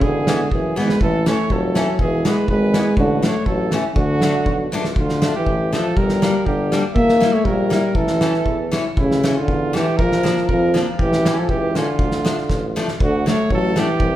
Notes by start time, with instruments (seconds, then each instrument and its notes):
0.01 tuba E1, euphonium D3, trumpet G#4, kick
0.27 steel-string acoustic guitar E3 G#3 B3, snare
0.51 tuba F#1, euphonium E3, trumpet G#4, kick
0.76 tuba G#1, steel-string acoustic guitar E3 G#3 B3, euphonium G#3, trumpet B4, snare
0.89 snare
1.01 tuba A1, euphonium E3, trumpet A4, kick
1.26 steel-string acoustic guitar E3 A3 C#4, euphonium A3, trumpet C#5, snare
1.50 tuba F1, euphonium F#3, trumpet A4, kick
1.75 steel-string acoustic guitar E3 A3 C#4, snare
1.99 tuba E1, euphonium E3, trumpet G#4, kick
2.25 steel-string acoustic guitar E3 G#3 B3, euphonium G#3, trumpet B4, snare
2.48 tuba G#1, euphonium G#3, trumpet B4, kick
2.74 steel-string acoustic guitar E3 G#3 B3, snare
2.97 tuba A1, euphonium D3, trumpet F#4, kick
3.22 steel-string acoustic guitar F#3 A3 D4, euphonium A3, trumpet C#5, snare
3.46 tuba A1, euphonium F#3, trumpet A4, kick
3.71 steel-string acoustic guitar E3 A3 C#4, snare
3.95 tuba D2, euphonium D3, trumpet F#4, kick
4.22 steel-string acoustic guitar F#3 A3 D4, snare
4.46 tuba B1, kick
4.72 tuba C#2, steel-string acoustic guitar F#3 A3 D4, snare
4.85 snare
4.96 tuba D2, euphonium D3, trumpet F4, kick
5.09 snare
5.22 steel-string acoustic guitar F3 A3 D4, snare
5.35 euphonium E3, trumpet G4
5.46 tuba A1, kick
5.73 steel-string acoustic guitar F3 A3 D4, euphonium F3, trumpet A4, snare
5.96 tuba G1, euphonium G3, trumpet A#4, kick
6.09 snare
6.22 steel-string acoustic guitar G3 A#3 D4, snare
6.46 tuba G1, euphonium D3, trumpet G4, kick
6.72 steel-string acoustic guitar G3 A#3 D4, snare
6.94 tuba E1, euphonium A#3, trumpet E5, kick
7.09 snare
7.20 steel-string acoustic guitar G3 A#3 E4, snare
7.33 euphonium A3, trumpet C#5
7.45 tuba A#1, euphonium G3, trumpet A#4, kick
7.70 steel-string acoustic guitar G3 A#3 E4, snare
7.94 tuba A1, euphonium E3, trumpet A4, kick
8.07 snare
8.21 steel-string acoustic guitar E3 A3 C#4, snare
8.33 snare
8.45 tuba E2, kick
8.72 steel-string acoustic guitar E3 A3 C#4, snare
8.97 tuba A1, euphonium C#3, trumpet E4, kick
9.11 snare
9.23 steel-string acoustic guitar E3 A3 C#4, snare
9.35 euphonium D3, trumpet F4
9.48 tuba E2, kick
9.73 steel-string acoustic guitar E3 A3 C#4, euphonium E3, trumpet G4, snare
9.98 tuba A#1, trumpet A#4, kick
10.02 euphonium F3
10.12 snare
10.23 steel-string acoustic guitar F3 A#3 D4, snare
10.37 snare
10.48 tuba F2, euphonium F3, trumpet A#4, kick
10.74 steel-string acoustic guitar F3 A#3 D4, snare
10.98 tuba A1, euphonium E3, trumpet G4, kick
11.13 snare
11.25 steel-string acoustic guitar E3 A3 C#4, snare
11.36 euphonium F3, trumpet A4
11.49 tuba C#2, euphonium E3, trumpet G4, kick
11.75 euphonium D3, steel-string acoustic guitar E3 A3 C#4, trumpet F4, snare
11.99 tuba D2, kick
12.11 snare
12.25 steel-string acoustic guitar F3 A3 D4, snare
12.38 snare
12.49 tuba A1, kick, snare
12.76 steel-string acoustic guitar F3 A3 D4, snare
12.88 snare
13.00 tuba D2, euphonium D3, trumpet F#4, kick
13.26 steel-string acoustic guitar F#3 A3 D4, euphonium A3, trumpet C#5, snare
13.50 tuba A1, euphonium F#3, trumpet A4, kick
13.76 euphonium E3, steel-string acoustic guitar F#3 A3 D4, trumpet G4, snare
14.00 tuba C2, kick